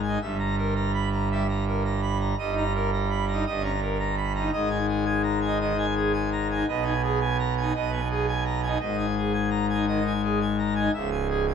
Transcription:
Already playing: G#1 G#2
0.03 G#5
0.08 D#4
0.21 G1 G2 E5
0.39 A#5
0.58 A#4
0.75 A#5
0.94 B5
1.13 A#5
1.32 G3 E5
1.49 A#5
1.67 A#4
1.85 A#5
2.02 B5
2.21 A#5
2.38 G1 G2 D#5
2.52 D#4
2.57 A#5
2.75 A#4
2.92 A#5
3.10 B5
3.28 A#5
3.33 D#4
3.46 G1 G2 D#5
3.60 C#4
3.64 A#5
3.82 A#4
4.00 A#5
4.17 B5
4.35 A#5
4.39 D#4
4.52 G#1 G#2 D#5
4.66 D#4
4.70 G#5
4.88 G#4
5.05 G#5
5.24 A#5
5.41 G#5
5.47 D#4
5.61 D#3 D#5
5.74 D#4
5.78 G#5
5.96 G#4
6.14 G#5
6.32 A#5
6.51 G#5
6.55 D#4
6.68 B1 B2 D#5
6.81 D#4
6.86 G#5
7.03 G#4
7.21 G#5
7.39 A#5
7.57 G#5
7.61 D#4
7.75 B1 B2 D#5
7.89 B3
7.93 G#5
8.11 G#4
8.28 G#5
8.45 A#5
8.63 D#4 G#5
8.80 G#1 G#2 D#5
8.94 D#4
8.99 G#5
9.17 G#4
9.33 G#5
9.51 A#5
9.69 D#4 G#5
9.87 D#3 D#5
10.01 D#4
10.07 G#5
10.24 G#4
10.41 G#5
10.59 A#5
10.75 G#5
10.80 D#4
10.94 C#1 C#2 E5
11.11 G#5
11.30 G#4
11.47 G#5

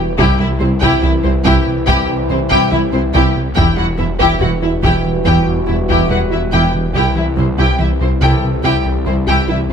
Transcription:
Already playing: E1 B2 E3 G3 F#4
0.18 C2 C3 E3 G3 E4 G4 G5, taiko
0.39 C2 E3 E4 E5
0.60 C2 C3 G3 C4 E4 C5
0.81 C2 C3 E4 G4 G5, taiko
1.03 C2 E3 E4 E5
1.24 C2 C4 E4 C5
1.45 C2 C3 E4 G4 G5, taiko
1.67 C3
1.87 C2 C3 E4 G4 G5, taiko
2.09 C2
2.29 C2 E3 C4 E4 C5
2.50 C2 C3 E4 G4 G5, taiko
2.71 C2 E3 E4 E5
2.92 C2 C4 E4 C5
3.14 C2 C3 E4 G4 G5
3.36 C3
3.55 E1 E2 B2 E3 G3 E4 F#4 G4 G5, taiko
3.77 E2 G3 E4 F#4 F#5
3.98 E1 E2 E3 B3 E4 E5
4.19 E2 E3 E4 G4 G5, taiko
4.40 E1 E2 G3 E4 F#4 F#5
4.61 E2 E4 E5
4.82 E1 E2 E3 E4 G4 G5, taiko
5.06 E3
5.25 E1 E2 E3 E4 G4 G5, taiko
5.48 E2
5.67 E1 E2 G3 E4 E5
5.89 E2 E3 E4 G4 G5, taiko
6.10 E1 E2 G3 E4 F#4 B4 F#5
6.31 E2 E4 E5
6.52 E1 E2 E3 E4 G4 G5
6.75 E3
6.94 C2 C3 E3 G3 E4 G4 G5
7.16 C2 E3 E4 E5
7.37 C2 C3 G3 C4 E4 C5
7.57 C2 C3 E4 G4 G5
7.79 C2 E3 E4 E5
8.00 C2 C4 E4 C5
8.21 C2 C3 E4 G4 A4 G5
8.43 C3
8.64 C2 C3 E4 G4 G5
8.86 C2
9.06 C2 E3 C4 E4 C5
9.27 C2 C3 E4 G4 G5
9.48 C2 E3 E4 E5
9.69 C4

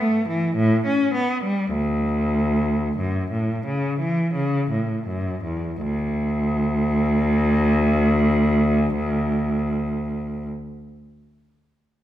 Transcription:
0.00 A3
0.28 E3
0.55 A2
0.86 C#4
1.14 B3
1.44 G3
1.72 D2
2.98 F#2
3.31 A2
3.66 C#3
3.99 E3
4.34 C#3
4.70 A2
5.07 F#2
5.44 E2
5.81 D2

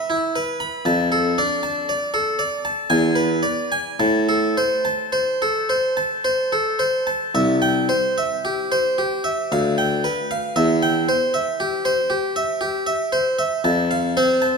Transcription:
Already playing: E5
0.10 E4
0.36 B4
0.60 B5
0.85 F2 A5
1.12 A4
1.38 D4 D5
1.63 A5
1.89 D5
2.14 A4
2.39 D5
2.65 A5
2.90 E2 G#5
3.16 B4
3.43 D5
3.72 G#5
4.00 A2 A5
4.29 A4
4.57 C5
4.85 A5
5.12 C5
5.42 A4
5.69 C5
5.97 A5
6.24 C5
6.52 A4
6.79 C5
7.07 A5
7.35 C2 E5
7.62 G5
7.89 C5
8.18 E5
8.45 G4
8.72 C5
8.98 G4
9.24 E5
9.52 D2 F5
9.78 G5
10.04 B4
10.31 F5
10.56 E2 E5
10.83 G5
11.09 C5
11.34 E5
11.60 G4
11.85 C5
12.10 G4
12.36 E5
12.61 G4
12.87 E5
13.12 C5
13.39 E5
13.64 F2 A5
13.91 F5
14.17 C4 C5
14.42 A5

